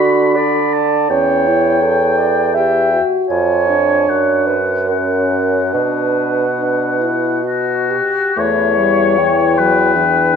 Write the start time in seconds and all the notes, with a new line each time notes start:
Already playing: D3 D4 F#4 B5
0.34 D5 B5
0.73 A5
1.10 E2 C#4 C#5 G5
1.47 E4
1.82 A4
2.18 D5
2.55 G4 E5 G5
2.93 F#4
3.29 F2 F4 C#5 G#5
3.69 D4
4.09 F#2 F#5
4.47 B4
4.88 C#4 A#4 F#5
5.73 B2 D4 B4 F#5
6.59 D4
7.01 E4
7.43 F#4
7.90 G4
8.37 E2 A3 E4 C#5 E5
8.78 G3
9.18 E3 E4 G5
9.58 F#3 B4
9.96 E3 D4 G5